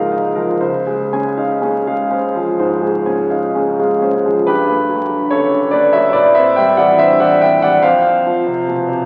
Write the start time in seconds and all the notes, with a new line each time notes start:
Already playing: G#2 F3 G#3 D#4 A#4 D#5 F5 G#5 A#5 D#6 A#6
0.12 D#4 D#5
0.36 F3 A#4
0.61 C#2 C5
0.87 G#3 G#4
1.13 C#4 G#5
1.37 D#4 F5
1.61 C#4 G#4
1.87 G#3 F5
2.11 C#4 C5
2.35 F3 G#4
2.59 G#2 C5
2.81 G#3 G#4
3.06 C#4 G#5
3.30 D#4 F5
3.55 C#4 G#4
3.79 G#3 F5
4.02 C#4 C5
4.26 F3 G#4
4.47 G2 G4 B4
4.69 A3
4.89 F#3
5.09 D3
5.30 C#3 A4 C#5
5.51 D3
5.71 A3 B4 D5
5.93 F#3 C#5 E5
6.13 A2 B4 D5
6.35 C4 C5 E5
6.56 G3 E5 G5
6.77 E3 D5 F#5
6.99 D3 C5 E5
7.20 E3 D5 F#5
7.41 C4 E5 G5
7.62 G3 D5 F#5
7.83 F2 C5 F5
8.05 C4
8.26 F3
8.47 C3
8.68 B2
8.89 C3